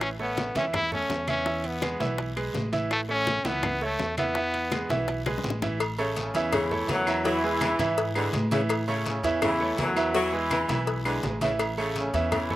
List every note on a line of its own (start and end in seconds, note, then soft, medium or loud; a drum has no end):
0.00 0.49 A1 medium
0.00 0.13 E3 medium
0.00 0.10 C#4 medium
0.00 0.13 E4 medium
0.00 0.13 E5 medium
0.00 high bongo medium
0.00 high conga soft
0.00 high timbale medium
0.00 long guiro medium
0.00 claves medium
0.19 0.49 A3 medium
0.19 0.54 B3 loud
0.19 0.49 A4 medium
0.19 0.49 C#5 medium
0.19 high bongo soft
0.19 high conga soft
0.37 high bongo medium
0.37 high conga medium
0.37 high timbale medium
0.37 low timbale medium
0.37 short guiro medium
0.55 1.06 E2 medium
0.55 0.85 E3 medium
0.55 0.65 C#4 medium
0.55 0.85 E4 medium
0.55 0.86 E5 medium
0.55 high bongo soft
0.55 high conga medium
0.55 high timbale medium
0.55 short guiro medium
0.73 0.91 E4 loud
0.73 high bongo medium
0.73 high conga soft
0.73 low conga medium
0.73 high timbale medium
0.73 long guiro medium
0.73 claves medium
0.92 1.21 A3 medium
0.92 1.27 C#4 loud
0.92 1.22 A4 medium
0.92 1.22 C#5 medium
0.92 high bongo soft
0.92 high conga soft
0.92 low conga medium
1.10 1.94 E2 loud
1.10 high bongo soft
1.10 low bongo medium
1.10 high conga soft
1.10 high timbale medium
1.10 low timbale medium
1.10 short guiro medium
1.27 1.43 E3 medium
1.27 1.68 C#4 medium
1.27 1.43 E4 medium
1.27 1.43 E5 medium
1.27 high conga medium
1.27 high timbale medium
1.27 short guiro medium
1.27 claves medium
1.46 1.75 E3 medium
1.46 1.76 E4 medium
1.46 1.76 E5 medium
1.46 high bongo medium
1.46 high conga soft
1.46 long guiro medium
1.64 2.20 B3 medium
1.64 high bongo soft
1.64 high conga soft
1.64 high timbale medium
1.82 1.97 G#3 medium
1.82 1.97 G#4 medium
1.82 1.97 B4 medium
1.82 high bongo medium
1.82 high conga medium
1.82 high timbale loud
1.82 low timbale medium
1.82 short guiro medium
1.82 claves medium
2.00 2.51 B1 medium
2.00 2.30 E3 medium
2.00 2.30 E4 medium
2.00 2.30 E5 medium
2.00 high bongo soft
2.00 high conga medium
2.00 short guiro medium
2.18 high bongo medium
2.18 high conga soft
2.18 high timbale medium
2.18 long guiro medium
2.36 2.66 G#3 medium
2.36 2.66 G#4 medium
2.36 2.66 B4 medium
2.36 high bongo soft
2.36 high conga soft
2.36 high timbale medium
2.36 claves medium
2.54 3.39 A1 medium
2.54 high bongo soft
2.54 low bongo medium
2.54 high conga medium
2.54 low timbale medium
2.54 short guiro medium
2.72 3.02 E3 medium
2.72 3.02 E4 medium
2.72 3.03 E5 medium
2.72 high conga medium
2.72 high timbale medium
2.72 short guiro medium
2.90 3.00 A3 loud
2.90 high bongo medium
2.90 high conga soft
2.90 high timbale medium
2.90 long guiro medium
2.90 claves medium
3.09 3.38 A3 medium
3.09 3.48 C#4 loud
3.09 3.39 A4 medium
3.09 3.39 C#5 medium
3.09 high bongo soft
3.09 high conga soft
3.27 high bongo medium
3.27 high conga medium
3.27 high timbale medium
3.27 low timbale medium
3.27 short guiro medium
3.45 3.95 C#2 loud
3.45 3.75 E3 medium
3.45 3.85 B3 medium
3.45 3.75 E4 medium
3.45 3.75 E5 medium
3.45 high bongo soft
3.45 high conga loud
3.45 high timbale medium
3.45 short guiro medium
3.63 high bongo medium
3.63 high conga soft
3.63 low conga medium
3.63 high timbale loud
3.63 long guiro medium
3.63 claves medium
3.81 4.11 A3 medium
3.81 4.18 A3 loud
3.81 4.11 A4 medium
3.81 4.12 C#5 medium
3.81 high bongo soft
3.81 high conga soft
3.99 4.84 E2 medium
3.99 high bongo soft
3.99 low bongo medium
3.99 high conga soft
3.99 high timbale medium
3.99 low timbale medium
3.99 short guiro medium
4.17 4.33 E3 medium
4.17 5.23 B3 loud
4.17 4.33 E4 medium
4.17 4.33 E5 medium
4.17 high conga medium
4.17 high timbale medium
4.17 short guiro medium
4.17 claves medium
4.35 4.65 E3 medium
4.35 4.66 E4 medium
4.35 4.66 E5 medium
4.35 high bongo medium
4.35 high conga soft
4.35 long guiro medium
4.54 high bongo soft
4.54 high conga soft
4.54 high timbale medium
4.72 4.87 G#3 medium
4.72 4.87 G#4 medium
4.72 4.87 B4 medium
4.72 high bongo medium
4.72 high conga medium
4.72 high timbale loud
4.72 low timbale medium
4.72 short guiro medium
4.72 claves medium
4.89 5.40 B1 medium
4.89 5.20 E3 medium
4.89 5.20 E4 medium
4.89 5.20 E5 medium
4.89 high bongo soft
4.89 high conga medium
4.89 short guiro medium
5.08 high bongo medium
5.08 high conga soft
5.08 high timbale medium
5.08 long guiro medium
5.26 5.56 G#3 medium
5.26 5.56 G#4 medium
5.26 5.56 B4 medium
5.26 high bongo loud
5.26 high conga medium
5.26 high timbale medium
5.26 claves medium
5.38 low bongo medium
5.44 6.28 A1 medium
5.44 high conga medium
5.44 low timbale medium
5.44 short guiro medium
5.50 low bongo medium
5.62 5.77 E3 medium
5.62 5.77 E4 medium
5.62 5.78 E5 medium
5.62 low bongo medium
5.62 low conga medium
5.62 high timbale medium
5.62 short guiro medium
5.80 cowbell loud
5.80 high conga soft
5.80 low agogo loud
5.80 long guiro medium
5.80 claves medium
5.98 6.29 C#3 medium
5.98 6.28 A3 medium
5.98 6.28 A4 medium
5.98 6.28 C#5 medium
5.98 high conga soft
5.98 low agogo medium
6.16 6.51 C#3 medium
6.16 6.51 C#4 medium
6.16 cowbell medium
6.16 high conga medium
6.16 low timbale medium
6.16 short guiro medium
6.34 6.85 E2 loud
6.34 6.65 E3 loud
6.34 6.65 E4 medium
6.34 6.65 E5 loud
6.34 cowbell medium
6.34 high conga soft
6.34 short guiro medium
6.52 6.72 C#3 medium
6.52 6.90 E3 loud
6.52 6.90 E4 medium
6.52 cowbell loud
6.52 high conga soft
6.52 low conga loud
6.52 low agogo loud
6.52 long guiro medium
6.52 claves medium
6.71 7.01 A3 medium
6.71 7.01 A4 medium
6.71 7.01 C#5 medium
6.71 high conga soft
6.71 low conga medium
6.88 7.73 E2 loud
6.88 7.23 F#2 medium
6.88 7.08 E3 medium
6.88 7.23 F#3 loud
6.88 cowbell medium
6.88 high conga medium
6.88 low timbale loud
6.88 low agogo medium
6.88 short guiro medium
7.07 7.22 E3 medium
7.07 7.22 E4 medium
7.07 7.22 E5 loud
7.07 high conga soft
7.07 low agogo loud
7.07 short guiro medium
7.07 claves medium
7.25 7.40 E3 medium
7.25 8.34 E3 loud
7.25 7.44 F#3 medium
7.25 7.40 E4 medium
7.25 8.34 E4 medium
7.25 7.40 E5 medium
7.25 cowbell loud
7.25 high conga soft
7.25 long guiro medium
7.43 7.73 G#3 medium
7.43 7.73 G#4 medium
7.43 7.73 B4 medium
7.43 high conga soft
7.61 7.91 E3 medium
7.61 cowbell medium
7.61 high conga loud
7.61 low timbale medium
7.61 low agogo loud
7.61 short guiro medium
7.61 claves medium
7.79 8.29 G#2 medium
7.79 8.09 E3 loud
7.79 8.09 E4 loud
7.79 8.09 E5 loud
7.79 cowbell medium
7.79 high conga medium
7.79 low agogo medium
7.79 short guiro medium
7.97 cowbell loud
7.97 high conga soft
7.97 long guiro medium
8.15 8.35 D3 medium
8.15 8.45 G#3 medium
8.15 8.45 G#4 medium
8.15 8.45 B4 medium
8.15 high conga soft
8.15 low agogo loud
8.15 claves medium
8.33 9.18 A2 loud
8.33 cowbell medium
8.33 high conga medium
8.33 low timbale medium
8.33 short guiro medium
8.51 8.61 C#3 medium
8.51 8.81 E3 medium
8.51 8.82 E4 medium
8.51 8.82 E5 medium
8.51 cowbell medium
8.51 high conga medium
8.51 low agogo medium
8.51 short guiro medium
8.69 cowbell loud
8.69 low agogo loud
8.69 long guiro medium
8.69 claves medium
8.88 9.18 C#3 medium
8.88 9.18 A3 medium
8.88 9.18 A4 medium
8.88 9.18 C#5 medium
8.88 high conga soft
8.88 low agogo medium
9.06 9.41 C#3 medium
9.06 9.41 C#4 medium
9.06 cowbell medium
9.06 high conga medium
9.06 low timbale medium
9.06 short guiro medium
9.23 9.74 E2 loud
9.23 9.54 E3 medium
9.23 9.54 E4 loud
9.23 9.54 E5 medium
9.23 cowbell medium
9.23 high conga soft
9.23 short guiro medium
9.42 9.61 C#3 medium
9.42 9.77 E3 loud
9.42 9.77 E4 medium
9.42 cowbell loud
9.42 high conga soft
9.42 low conga loud
9.42 low agogo loud
9.42 long guiro medium
9.42 claves medium
9.60 9.90 A3 medium
9.60 9.90 A4 medium
9.60 9.90 C#5 medium
9.60 high conga soft
9.78 10.63 E2 loud
9.78 10.13 F#2 medium
9.78 9.98 E3 medium
9.78 10.13 F#3 loud
9.78 cowbell medium
9.78 high conga medium
9.78 low timbale loud
9.78 low agogo medium
9.78 short guiro medium
9.96 10.11 E3 loud
9.96 10.12 E4 medium
9.96 10.12 E5 loud
9.96 high conga soft
9.96 low agogo loud
9.96 short guiro medium
9.96 claves medium
10.14 10.29 E3 medium
10.14 11.24 E3 loud
10.14 10.34 F#3 loud
10.14 10.30 E4 medium
10.14 11.25 E4 medium
10.14 10.30 E5 medium
10.14 cowbell loud
10.14 high conga soft
10.14 long guiro medium
10.33 10.62 G#3 medium
10.33 10.63 G#4 medium
10.33 10.63 B4 medium
10.33 high conga soft
10.51 10.81 E3 medium
10.51 cowbell medium
10.51 high conga medium
10.51 low timbale medium
10.51 low agogo loud
10.51 short guiro medium
10.51 claves medium
10.68 11.19 B1 loud
10.68 10.99 E3 medium
10.68 10.99 E4 medium
10.68 10.99 E5 loud
10.68 cowbell medium
10.68 high conga medium
10.68 low agogo medium
10.68 short guiro medium
10.87 cowbell loud
10.87 high conga soft
10.87 long guiro medium
11.05 11.24 D3 medium
11.05 11.35 G#3 medium
11.05 11.35 G#4 medium
11.05 11.35 B4 medium
11.05 high conga soft
11.05 low agogo loud
11.05 claves medium
11.23 12.08 A1 loud
11.23 cowbell medium
11.23 high conga medium
11.23 low timbale medium
11.23 short guiro medium
11.41 11.51 C#3 medium
11.41 11.71 E3 medium
11.41 11.71 E4 medium
11.41 11.72 E5 medium
11.41 cowbell medium
11.41 high conga medium
11.41 low agogo medium
11.41 short guiro medium
11.59 cowbell loud
11.59 high conga soft
11.59 low agogo loud
11.59 long guiro medium
11.59 claves medium
11.77 12.08 C#3 medium
11.77 12.07 A3 medium
11.77 12.08 A4 medium
11.77 12.08 C#5 medium
11.77 high conga soft
11.77 low agogo medium
11.96 12.30 C#3 medium
11.96 12.31 C#4 medium
11.96 cowbell medium
11.96 high conga medium
11.96 low timbale medium
11.96 short guiro medium
12.13 12.56 E2 loud
12.13 12.44 E3 medium
12.13 12.44 E4 medium
12.13 12.44 E5 medium
12.13 cowbell medium
12.13 high conga soft
12.13 short guiro medium
12.32 12.51 C#3 medium
12.32 12.56 E3 loud
12.32 12.56 E4 medium
12.32 cowbell loud
12.32 high conga soft
12.32 low conga medium
12.32 low agogo loud
12.32 long guiro medium
12.32 claves medium
12.50 12.56 A3 medium
12.50 12.56 A4 medium
12.50 12.56 C#5 medium
12.50 high conga soft
12.50 low conga medium